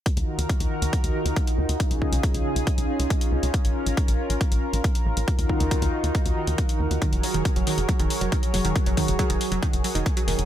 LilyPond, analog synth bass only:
\new Staff \with { instrumentName = "Analog synth bass" } { \clef bass \time 4/4 \key ees \minor \tempo 4 = 138 r16 ees,16 r16 ees,16 r16 ees,16 r16 ees,16 r16 ees,16 r16 ees,16 r8 ees,16 ees,16 | r16 des,16 r16 des,16 r16 des,16 r16 des,16 r16 des,16 r16 des,16 r8 des,16 des,16 | r16 bes,,16 r16 bes,,16 r16 bes,,16 r16 bes,,16 r16 bes,,16 r16 bes,,16 r8 bes,,16 bes,,16 | r16 ees,16 r16 ees,16 r16 ees,16 r16 ees,16 r16 ees,16 r16 ees,16 r8 ees,16 ees,16 |
r16 ges,,16 r16 ges,,16 r16 ges,,16 r16 ges,,16 r16 ges,,16 r16 ges,,16 r8 ges,,16 ges,,16 | r16 ges,,16 r16 ges,,16 r16 ges,,16 r16 ges,,16 r16 ges,,16 r16 ges,,16 r8 ges,,16 ges,,16 | }